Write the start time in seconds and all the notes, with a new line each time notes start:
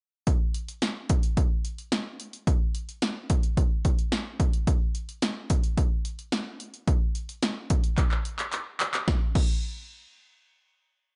0.27 kick, closed hi-hat
0.54 closed hi-hat
0.69 closed hi-hat
0.82 snare, closed hi-hat
1.09 kick, closed hi-hat
1.23 closed hi-hat
1.37 kick, closed hi-hat
1.65 closed hi-hat
1.78 closed hi-hat
1.92 snare, closed hi-hat
2.20 closed hi-hat
2.33 closed hi-hat
2.47 kick, closed hi-hat
2.75 closed hi-hat
2.89 closed hi-hat
3.02 snare, closed hi-hat
3.30 kick, closed hi-hat
3.43 closed hi-hat
3.57 kick, closed hi-hat
3.85 kick, closed hi-hat
3.99 closed hi-hat
4.12 snare, closed hi-hat
4.40 kick, closed hi-hat
4.53 closed hi-hat
4.67 kick, closed hi-hat
4.95 closed hi-hat
5.09 closed hi-hat
5.22 snare, closed hi-hat
5.50 kick, closed hi-hat
5.63 closed hi-hat
5.77 kick, closed hi-hat
6.05 closed hi-hat
6.19 closed hi-hat
6.32 snare, closed hi-hat
6.60 closed hi-hat
6.74 closed hi-hat
6.88 kick, closed hi-hat
7.15 closed hi-hat
7.29 closed hi-hat
7.42 snare, closed hi-hat
7.70 kick, closed hi-hat
7.84 closed hi-hat
7.98 kick, clap, closed hi-hat
8.11 clap
8.25 closed hi-hat
8.39 clap, closed hi-hat
8.53 clap, closed hi-hat
8.80 clap, closed hi-hat
8.94 clap, closed hi-hat
9.08 kick, snare
9.35 kick, crash